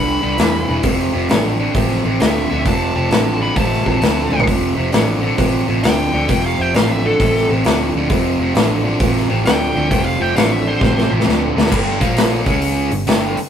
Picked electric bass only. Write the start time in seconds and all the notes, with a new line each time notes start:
Already playing: C2
0.23 C2
0.39 E2
0.69 E1
0.83 F1
1.14 F1
1.30 A1
1.75 A1
2.05 A1
2.20 D2
2.51 D2
2.66 F1
2.96 F1
3.11 A1
3.56 A1
3.86 A1
4.02 D2
4.31 D2
4.48 F1
4.77 F1
4.93 A1
5.38 A1
5.69 A1
5.83 D2
6.13 D2
6.29 F1
6.59 F1
6.75 A1
7.20 A1
7.49 A1
7.65 D2
7.94 D2
8.10 F1
8.39 F1
8.55 A1
9.00 A1
9.31 A1
9.47 D2
9.76 D2
9.91 F1
10.20 F1
10.36 A1
10.81 A1
11.11 A1
11.26 D2
11.56 D2
11.72 G1
12.01 A#1
12.46 C#2
12.92 G1
13.08 G1
13.37 muted picked electric bass stroke